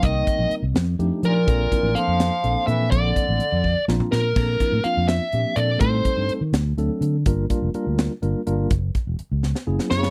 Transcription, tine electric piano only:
\new Staff \with { instrumentName = "Tine electric piano" } { \time 6/8 \key g \dorian \tempo 4. = 83 << { r2. | r2. | r2 bes''4 | r2. |
r2. | r2. | r2. | } \\ { <g bes c' ees' bes'>4 r4 <f a d' ees' g'>8. r16 | <f bes c' d' a'>8 <f bes c' d' e'>8 <f bes c' d' a'>8. r16 <f bes c' d' a'>8 <f bes c' d' a'>8~ | <f bes c' d' a'>4 r4 <f bes c' d' f'>8. r16 | <f bes c' d' a'>8 <f bes c' d' e'>8 <f bes c' d' f'>8. r16 <f bes c' d' g'>8 <f bes c' d' a'>8 |
<g a c' ees' a'>4 r4 <fis a c' d' a'>8. r16 | <g bes d' f' bes'>8 <g bes d' f' bes'>8 <g bes d' f' bes'>8. r16 <g bes d' f' bes'>8 <g bes d' f' bes'>8 | r2 <ges bes des' fes' aes'>8. r16 | } >> }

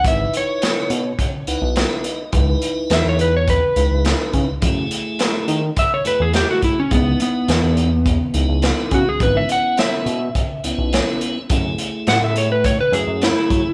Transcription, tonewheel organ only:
\new Staff \with { instrumentName = "Tonewheel organ" } { \time 4/4 \key cis \minor \tempo 4 = 105 << { r2 r8 fis''8 e''8 dis''8 | r1 | r1 | r1 |
r1 | r1 | } \\ { <dis' e' b'>4.~ <dis' e' b'>16 r8. <dis' e' b'>4. | <dis' e' b'>4.~ <dis' e' b'>16 r8. <dis' e' b'>4. | <a e' gis'>4.~ <a e' gis'>16 r8. <a e' gis'>4. | <b dis' e'>4.~ <b dis' e'>16 r8. <b dis' e'>4. |
<b cis' e'>4.~ <b cis' e'>16 r8. <b cis' e'>4. | <a e' gis'>4.~ <a e' gis'>16 r8. <a e' gis'>4. | } >> }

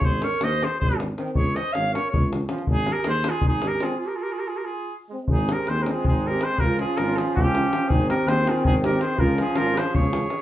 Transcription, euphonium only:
\new Staff \with { instrumentName = "Euphonium" } { \time 7/8 \key aes \major \tempo 4 = 161 r2. c'8~ | c'8 r2 r8 des'8~ | des'8 r2 r8 c'8~ | c'8 r2 r8 c'8 |
c'2.~ c'8 | des'2.~ des'8 | c'2.~ c'8 | des'2. r8 | }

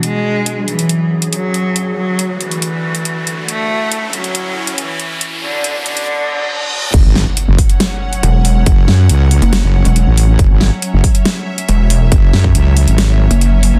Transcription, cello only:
\new Staff \with { instrumentName = "Cello" } { \clef bass \time 4/4 \key fis \minor \tempo 4 = 139 gis4. e4. fis4~ | fis8 fis4 e2~ e8 | a4. fis4. e4~ | e8 d4 d2~ d8 |
r1 | r1 | r1 | r1 | }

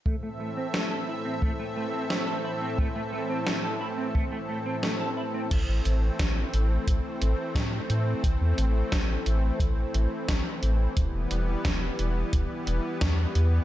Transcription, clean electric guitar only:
\new Staff \with { instrumentName = "Clean electric guitar" } { \time 4/4 \key a \minor \tempo 4 = 88 a16 a16 a16 c'16 a16 a'16 e'16 c'16 a16 a16 a16 c'16 a16 a'16 e'16 c'16 | a16 a16 a16 c'16 a16 a'16 e'16 c'16 a16 a16 a16 c'16 a16 a'16 e'16 c'16 | r1 | r1 |
r1 | }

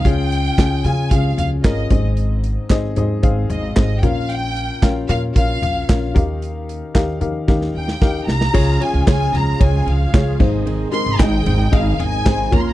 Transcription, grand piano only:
<<
  \new Staff \with { instrumentName = "Grand piano" } { \time 4/4 \key aes \major \tempo 4 = 113 <des' f' aes' f''>8. r16 <des' f' aes' aes''>8 <des' f' aes' f''>8 <des' f' aes' f''>8. r16 <des' f' aes' bes'>8 <c' ees' aes' ees''>8~ | <c' ees' aes' ees''>8 r8 <c' ees' aes' ees''>8 <c' ees' aes' ees''>8 <c' ees' aes' f''>8. r16 <c' ees' aes' ees''>8 <des' f' bes' f''>8~ | <des' f' bes' f''>8 r8 <des' f' bes' f''>8 <des' f' bes' f''>8 <des' f' bes' f''>8. r16 <des' f' bes' f''>8 <ees' g' bes' f''>8~ | <ees' g' bes' f''>8 r8 <ees' g' bes' f''>8 <ees' g' bes' f''>8 <ees' g' bes' f''>8. r16 <ees' g' bes' f''>8. r16 |
<f' aes' des''>8 <f' aes' des''>8 <f' aes' des''>8. r16 <f' aes' des''>8. r16 <f' aes' des''>8 <ees' aes' c''>8~ | <ees' aes' c''>8 <ees' aes' bes'>8 <ees' aes' ees''>8. r16 <ees' aes' ees''>8. r16 <ees' aes' c''>8 <f' bes' des''>8 | }
  \new Staff \with { instrumentName = "Grand piano" } { \clef bass \time 4/4 \key aes \major des4. r2 aes,8~ | aes,4 r2 r8 bes,8~ | bes,4 r2 r8 ees8~ | ees4 r2. |
des4. r2 aes,8~ | aes,4 r2 r8 bes,8 | }
>>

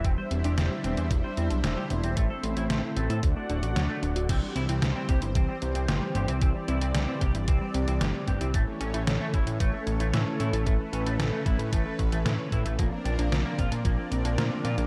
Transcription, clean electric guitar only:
\new Staff \with { instrumentName = "Clean electric guitar" } { \time 4/4 \key c \lydian \tempo 4 = 113 c'16 c''16 r16 g'16 c'16 r16 c'16 c''16 r16 c''16 c'16 r16 c'16 g'16 r16 c'16 | a16 a'16 r16 e'16 a16 r16 a16 a'16 r16 d'16 d16 r16 d16 a16 r16 d16 | c'16 r16 e'16 c'16 r16 c'16 g'16 r16 c'16 c'16 r16 c'16 g'16 r16 g'16 c'16 | c'16 r16 e'16 c'16 r16 c'16 g'16 r16 c'16 c'16 r16 c'16 g'16 r16 g'16 c'16 |
a16 r16 cis'16 a16 r16 a16 e'16 r16 a16 a16 r16 a16 e'16 r16 e'16 a16 | a16 r16 cis'16 a16 r16 a16 e'16 r16 a16 a16 r16 a16 e'16 r16 e'16 a16 | bes16 r16 d'16 bes16 r16 bes16 f'16 r16 bes16 bes16 r16 bes16 f'16 r16 f'16 bes16 | }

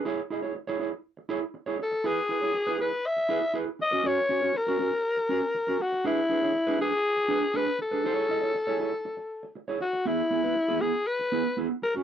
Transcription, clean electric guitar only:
\new Staff \with { instrumentName = "Clean electric guitar" } { \time 4/4 \key e \major \tempo 4 = 120 <e' gis' cis''>16 r16 <e' gis' dis''>16 <e' gis' cis''>16 r16 <e' gis' cis''>16 <e' gis' cis''>16 r8. <e' gis' cis''>16 r8 <e' gis' cis''>16 r8 | <e' gis' b'>16 r16 <e' gis' b'>16 <e' gis' cis''>16 r16 <e' gis' b'>16 <e' gis' b'>16 r8. <e' gis' b'>16 r16 <e' gis' b'>16 r8 <cis' fis' ais'>16 | <cis' fis' ais'>16 r16 <cis' fis' cis''>16 <cis' fis' ais'>16 r16 <cis' fis' ais'>16 <cis' fis' ais'>16 r8. <cis' fis' ais'>16 r8 <cis' fis' ais'>16 r8 | <d' gis' b'>16 r16 <d' gis' b'>16 <d' gis' cis''>16 r16 <d' gis' b'>16 <d' gis' b'>16 r8. <d' gis' b'>16 r16 <d' gis' b'>16 r8 <d' gis' b'>16 |
<e' gis' cis''>8 <e' gis' dis''>16 <e' gis' cis''>16 r16 <e' gis' cis''>16 <e' gis' cis''>16 r4. <e' gis' cis''>16 r8 | <b e' gis'>16 r16 <b e' gis'>16 <b e' b'>16 r16 <b e' gis'>16 <b e' gis'>16 r8. <b e' gis'>16 r16 <b e' gis'>16 r8 <cis' fis' ais'>16 | }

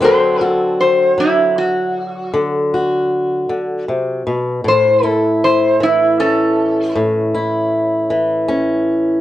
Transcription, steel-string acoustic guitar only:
\new Staff \with { instrumentName = "Steel-string acoustic guitar" } { \clef bass \time 12/8 \key d \major \tempo 4. = 52 << { <fis c' fis' a'>8 fis'2. fis'2~ fis'8 | r8 e'4. cis'4. e'4. cis'4 | } \\ { d4. fis4. d4. d8 c8 b,8 | a,4. e4. a,4. e4. | } >> }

